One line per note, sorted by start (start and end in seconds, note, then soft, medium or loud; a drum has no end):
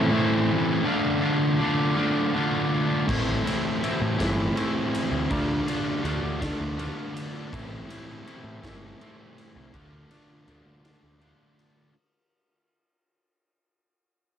0.00 0.51 A2 medium
0.00 0.10 E3 medium
0.00 0.12 A3 medium
0.00 0.12 C4 medium
0.00 0.14 E4 medium
0.11 0.84 E3 medium
0.11 0.86 A3 medium
0.11 0.85 C4 medium
0.11 0.87 E4 medium
0.85 1.58 D3 loud
0.85 1.25 A3 loud
0.85 1.23 D4 loud
0.85 1.21 F4 loud
1.22 1.60 A3 medium
1.22 1.60 D4 medium
1.22 1.61 F4 medium
1.60 1.98 D3 medium
1.60 1.98 A3 medium
1.60 1.96 D4 medium
1.60 1.95 F4 medium
1.97 2.32 D3 medium
1.97 2.34 A3 medium
1.97 2.34 D4 medium
1.97 2.35 F4 medium
2.34 3.06 D3 medium
2.34 3.08 A3 medium
2.34 3.07 D4 medium
2.34 3.08 F4 medium
3.07 3.38 A1 loud
3.07 3.82 A2 loud
3.07 3.80 E3 loud
3.07 3.47 A3 loud
3.07 3.45 C4 loud
3.07 3.44 E4 loud
3.07 kick loud
3.07 crash loud
3.44 3.82 A3 medium
3.44 3.82 C4 medium
3.44 3.83 E4 medium
3.44 ride medium
3.81 4.20 E3 medium
3.81 4.19 A3 medium
3.81 4.17 C4 medium
3.81 4.17 E4 medium
3.81 ride medium
4.01 4.16 A2 medium
4.18 4.49 G1 loud
4.18 4.94 A2 medium
4.18 4.55 E3 medium
4.18 4.56 A3 medium
4.18 4.56 C4 medium
4.18 4.58 E4 medium
4.18 kick medium
4.18 snare loud
4.18 ride loud
4.55 5.29 E3 medium
4.55 5.31 A3 medium
4.55 5.29 C4 medium
4.55 5.32 E4 medium
4.55 ride medium
4.94 ride medium
5.11 5.26 D2 medium
5.30 5.60 D2 loud
5.30 6.02 D3 loud
5.30 5.70 A3 loud
5.30 5.67 D4 loud
5.30 5.66 F4 loud
5.30 kick loud
5.30 ride loud
5.67 6.04 A3 medium
5.67 6.04 D4 medium
5.67 6.05 F4 medium
5.67 ride medium
6.03 6.19 D2 medium
6.03 6.42 D3 medium
6.03 6.42 A3 medium
6.03 6.40 D4 medium
6.03 6.38 F4 medium
6.03 ride medium
6.22 6.52 D2 medium
6.39 6.76 D3 medium
6.39 6.78 A3 medium
6.39 6.78 D4 medium
6.39 6.79 F4 medium
6.39 kick medium
6.39 snare loud
6.39 ride loud
6.60 6.89 D2 medium
6.77 7.50 D3 medium
6.77 7.52 A3 medium
6.77 7.51 D4 medium
6.77 7.51 F4 loud
6.77 ride medium
7.16 ride medium
7.52 7.82 A1 loud
7.52 8.26 A2 medium
7.52 8.24 E3 loud
7.52 7.91 A3 loud
7.52 7.89 C4 loud
7.52 7.88 E4 loud
7.52 kick loud
7.52 ride loud
7.88 8.26 A3 medium
7.88 8.26 C4 medium
7.88 8.28 E4 medium
7.88 ride loud
8.25 8.64 E3 medium
8.25 8.64 A3 medium
8.25 8.62 C4 medium
8.25 8.62 E4 medium
8.25 ride medium
8.44 8.59 A2 medium
8.62 8.92 G1 loud
8.62 9.38 A2 medium
8.62 8.99 E3 medium
8.62 9.00 A3 medium
8.62 9.00 C4 medium
8.62 9.02 E4 loud
8.62 kick medium
8.62 snare loud
8.62 ride loud
8.99 9.73 E3 medium
8.99 9.74 A3 medium
8.99 9.72 C4 medium
8.99 9.76 E4 medium
8.99 ride medium
9.38 ride medium
9.56 9.70 C2 loud
9.73 10.03 D2 loud
9.73 10.46 D3 loud
9.73 10.12 A3 loud
9.73 10.10 D4 loud
9.73 10.09 F4 loud
9.73 kick loud
9.73 ride loud
10.10 10.47 A3 medium
10.10 10.48 D4 medium
10.10 10.49 F4 medium
10.10 ride medium
10.47 10.62 D2 medium
10.47 10.85 D3 medium
10.47 10.84 A3 medium
10.47 10.83 D4 medium
10.47 10.82 F4 medium
10.47 ride medium
10.66 10.95 D2 loud
10.83 11.19 D3 medium
10.83 11.20 A3 medium
10.83 11.21 D4 medium
10.83 11.22 F4 medium
10.83 snare loud
10.83 ride loud
11.03 11.32 D2 medium
11.20 11.92 D3 medium
11.20 11.93 A3 medium
11.20 11.94 D4 medium
11.20 11.94 F4 loud
11.20 ride medium
11.59 ride medium